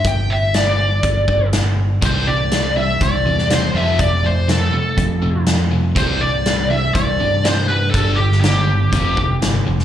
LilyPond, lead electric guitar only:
\new Staff \with { instrumentName = "Lead electric guitar" } { \time 4/4 \key c \major \tempo 4 = 122 g''8 e''8 d''2 r4 | c''8 d''4 e''8 d''4 c''8 e''8 | d''8 c''8 a'2 r4 | c''8 d''4 e''8 d''4 c''8 b'8 |
a'8 g'8 g'2 r4 | }